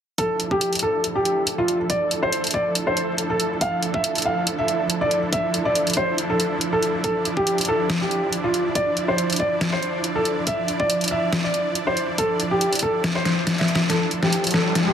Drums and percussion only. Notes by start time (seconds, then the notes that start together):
0.18 kick, closed hi-hat
0.40 closed hi-hat
0.51 kick
0.61 closed hi-hat
0.73 closed hi-hat
0.75 closed hi-hat
0.79 closed hi-hat
1.04 closed hi-hat
1.25 closed hi-hat
1.47 closed hi-hat
1.68 closed hi-hat
1.90 kick, closed hi-hat
2.11 closed hi-hat
2.33 closed hi-hat
2.44 closed hi-hat
2.47 closed hi-hat
2.51 kick, closed hi-hat
2.75 closed hi-hat
2.97 closed hi-hat
3.18 closed hi-hat
3.40 closed hi-hat
3.61 kick, closed hi-hat
3.83 closed hi-hat
3.94 kick
4.04 closed hi-hat
4.15 closed hi-hat
4.18 closed hi-hat
4.22 closed hi-hat
4.47 closed hi-hat
4.68 closed hi-hat
4.90 closed hi-hat
5.11 closed hi-hat
5.33 kick, closed hi-hat
5.54 closed hi-hat
5.75 closed hi-hat
5.87 closed hi-hat
5.90 closed hi-hat
5.93 kick, closed hi-hat
6.18 closed hi-hat
6.40 closed hi-hat
6.61 closed hi-hat
6.83 closed hi-hat
7.04 kick, closed hi-hat
7.25 closed hi-hat
7.37 kick
7.47 closed hi-hat
7.58 closed hi-hat
7.61 closed hi-hat
7.65 closed hi-hat
7.90 snare, closed hi-hat
8.11 closed hi-hat
8.33 closed hi-hat
8.54 closed hi-hat
8.75 kick, closed hi-hat
8.97 closed hi-hat
9.18 closed hi-hat
9.30 closed hi-hat
9.33 closed hi-hat
9.36 kick, closed hi-hat
9.61 snare, closed hi-hat
9.83 closed hi-hat
10.04 closed hi-hat
10.25 closed hi-hat
10.47 kick, closed hi-hat
10.68 closed hi-hat
10.80 kick
10.90 closed hi-hat
11.01 closed hi-hat
11.04 closed hi-hat
11.08 closed hi-hat
11.33 snare, closed hi-hat
11.54 closed hi-hat
11.75 closed hi-hat
11.97 closed hi-hat
12.18 kick, closed hi-hat
12.40 closed hi-hat
12.61 closed hi-hat
12.73 closed hi-hat
12.75 closed hi-hat
12.79 kick, closed hi-hat
13.04 snare, closed hi-hat
13.25 snare, closed hi-hat
13.47 snare, closed hi-hat
13.58 snare, closed hi-hat
13.68 closed hi-hat
13.75 snare
13.90 snare, closed hi-hat
14.11 closed hi-hat
14.23 snare
14.33 closed hi-hat
14.44 closed hi-hat
14.47 closed hi-hat
14.51 snare, closed hi-hat
14.75 snare, closed hi-hat